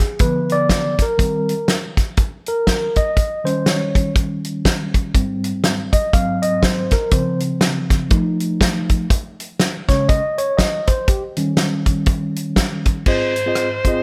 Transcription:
0.00 0.24 G#4 medium
0.19 0.95 D3 medium
0.19 0.95 F3 soft
0.19 0.95 B3 medium
0.19 0.54 B4 loud
0.19 kick loud
0.19 closed hi-hat medium
0.49 1.04 D5 loud
0.49 closed hi-hat medium
0.69 kick medium
0.69 snare loud
0.69 closed hi-hat loud
0.98 1.74 A#4 medium
0.98 kick medium
0.98 snare soft
0.98 closed hi-hat medium
1.18 1.54 D#3 medium
1.18 1.54 G3 soft
1.18 1.54 C4 medium
1.18 kick loud
1.18 closed hi-hat medium
1.49 closed hi-hat medium
1.68 snare loud
1.68 closed hi-hat medium
1.97 kick medium
1.97 snare soft
1.97 closed hi-hat medium
2.17 kick loud
2.17 closed hi-hat medium
2.46 2.98 A#4 loud
2.46 closed hi-hat medium
2.67 kick medium
2.67 snare loud
2.67 closed hi-hat medium
2.96 3.47 D#5 loud
2.96 kick medium
2.96 closed hi-hat medium
3.17 kick loud
3.17 closed hi-hat medium
3.44 5.10 D#3 medium
3.44 5.10 G3 soft
3.44 5.10 C#4 medium
3.44 3.66 C5 loud
3.44 closed hi-hat medium
3.66 4.13 C#5 medium
3.66 snare loud
3.66 closed hi-hat medium
3.95 kick medium
3.95 closed hi-hat medium
4.16 kick loud
4.16 closed hi-hat medium
4.44 closed hi-hat medium
4.65 kick medium
4.65 snare loud
4.65 closed hi-hat medium
4.94 kick medium
4.94 closed hi-hat medium
5.14 5.89 G#2 medium
5.14 5.89 G3 soft
5.14 5.89 C4 medium
5.14 kick loud
5.14 closed hi-hat medium
5.44 closed hi-hat medium
5.64 snare loud
5.64 closed hi-hat medium
5.93 6.14 D#5 loud
5.93 kick medium
5.93 closed hi-hat medium
6.13 6.88 G#2 medium
6.13 6.88 F#3 soft
6.13 6.89 C4 medium
6.13 6.43 F5 loud
6.13 kick loud
6.13 closed hi-hat medium
6.42 6.63 D#5 loud
6.42 closed hi-hat medium
6.62 6.93 C5 medium
6.62 kick medium
6.62 snare loud
6.62 closed hi-hat medium
6.91 7.13 A#4 medium
6.91 kick medium
6.91 snare soft
6.91 closed hi-hat medium
7.11 8.07 C#3 medium
7.11 8.07 F3 medium
7.11 8.07 C4 medium
7.11 7.40 C5 medium
7.11 kick loud
7.11 closed hi-hat medium
7.40 closed hi-hat medium
7.61 snare loud
7.61 closed hi-hat medium
7.90 kick medium
7.90 snare soft
7.90 closed hi-hat medium
8.10 9.06 F3 medium
8.10 9.06 A3 medium
8.10 9.06 D#4 medium
8.10 kick loud
8.10 closed hi-hat medium
8.40 closed hi-hat medium
8.61 kick medium
8.61 snare loud
8.61 closed hi-hat medium
8.89 kick medium
8.89 closed hi-hat medium
9.10 kick loud
9.10 closed hi-hat medium
9.40 closed hi-hat medium
9.60 snare loud
9.60 closed hi-hat medium
9.88 10.19 C#3 medium
9.88 10.19 G#3 medium
9.88 10.19 C#4 medium
9.88 10.08 C#5 loud
9.88 kick medium
9.88 snare soft
9.88 closed hi-hat medium
10.09 10.39 D#5 loud
10.09 kick loud
10.09 closed hi-hat medium
10.38 10.59 C#5 loud
10.38 closed hi-hat medium
10.57 10.88 D#5 medium
10.57 kick medium
10.57 snare loud
10.57 closed hi-hat loud
10.87 11.09 C5 loud
10.87 kick medium
10.87 closed hi-hat medium
11.08 11.22 G4 medium
11.08 kick loud
11.08 closed hi-hat medium
11.37 13.02 D#3 medium
11.37 13.02 G3 medium
11.37 13.02 C#4 medium
11.37 closed hi-hat medium
11.57 snare loud
11.57 closed hi-hat medium
11.86 kick medium
11.86 closed hi-hat medium
12.06 kick loud
12.06 closed hi-hat medium
12.36 closed hi-hat medium
12.56 kick medium
12.56 snare loud
12.56 closed hi-hat loud
12.85 kick medium
12.85 closed hi-hat medium
13.06 14.03 G#2 medium
13.06 13.32 C4 medium
13.06 13.33 F4 medium
13.06 13.33 G#4 medium
13.06 14.03 C5 medium
13.06 13.33 D#5 medium
13.06 kick loud
13.06 crash medium
13.36 closed hi-hat medium
13.46 13.67 C4 medium
13.46 13.67 F4 medium
13.46 13.68 G#4 medium
13.46 13.68 D#5 medium
13.55 cross-stick loud
13.55 closed hi-hat medium
13.85 14.03 C4 medium
13.85 14.03 F4 medium
13.85 14.03 G#4 medium
13.85 14.03 D#5 medium
13.85 kick medium
13.85 closed hi-hat medium

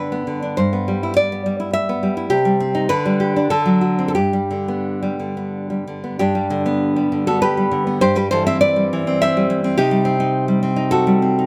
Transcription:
0.00 0.55 G2 medium
0.00 0.26 D3 soft
0.00 0.11 B3 soft
0.00 0.41 D4 soft
0.00 0.55 B4 medium
0.12 0.58 B3 soft
0.27 0.58 D3 soft
0.42 0.59 D4 soft
0.57 2.27 G2 medium
0.57 1.14 C5 medium
0.73 1.31 B3 soft
0.88 1.45 G3 medium
1.03 1.16 E4 medium
1.17 1.59 D5 loud
1.32 1.88 B3 soft
1.46 2.02 G3 medium
1.60 1.73 E4 medium
1.73 2.17 E5 loud
1.89 2.29 B3 medium
2.03 2.32 G3 soft
2.17 2.31 E4 medium
2.30 2.88 C3 medium
2.30 2.87 G4 loud
2.45 2.90 G3 medium
2.60 2.89 C4 medium
2.75 2.90 D#4 medium
2.89 3.48 D3 medium
2.89 3.47 B4 loud
3.05 3.36 G3 medium
3.20 3.50 G4 medium
3.36 3.51 D4 medium
3.50 4.14 D3 medium
3.50 4.05 A4 loud
3.66 4.15 F#3 medium
3.81 4.15 F#4 medium
3.99 4.16 C4 soft
4.08 4.14 A4 medium
4.15 6.16 G2 medium
4.15 5.82 G4 medium
4.33 5.01 G3 soft
4.51 5.18 D3 medium
4.68 5.36 B3 soft
5.03 5.69 G3 soft
5.20 5.86 D3 soft
5.37 6.02 B3 soft
5.70 6.19 G3 soft
5.87 6.20 D3 soft
6.04 6.19 B3 soft
6.19 7.98 G2 medium
6.19 7.24 D4 medium
6.19 7.23 G4 medium
6.35 6.95 G3 medium
6.50 7.11 D3 medium
6.66 7.26 B3 medium
6.96 7.56 G3 medium
7.12 7.70 D3 medium
7.27 7.86 B3 medium
7.27 7.41 F#4 medium
7.27 7.41 A4 medium
7.42 7.98 G4 medium
7.42 7.99 B4 medium
7.57 8.02 G3 medium
7.71 8.01 D3 medium
7.87 8.02 B3 medium
8.01 9.74 G2 medium
8.01 8.16 G4 medium
8.01 8.16 C5 loud
8.15 8.75 G3 medium
8.15 8.31 G4 medium
8.15 8.30 B4 medium
8.31 8.92 E3 medium
8.31 8.46 A4 medium
8.31 8.46 C5 loud
8.46 9.06 C4 medium
8.46 8.61 C5 medium
8.46 8.60 E5 loud
8.61 9.17 B4 medium
8.61 9.18 D5 loud
8.76 9.36 G3 medium
8.93 9.49 E3 medium
9.07 9.63 C4 medium
9.22 9.75 C5 medium
9.22 9.76 E5 loud
9.37 9.78 G3 medium
9.50 9.78 E3 medium
9.64 9.78 C4 medium
9.78 11.46 C3 medium
9.78 10.19 D#4 medium
9.78 10.88 G4 loud
9.91 10.47 G3 medium
10.05 10.61 C4 medium
10.20 10.75 D#4 medium
10.48 11.06 G3 medium
10.63 11.21 C4 medium
10.76 11.37 D#4 medium
10.91 11.46 F#4 medium
10.91 11.46 A4 loud
11.07 11.46 G3 medium
11.22 11.46 C4 soft
11.39 11.46 D#4 medium

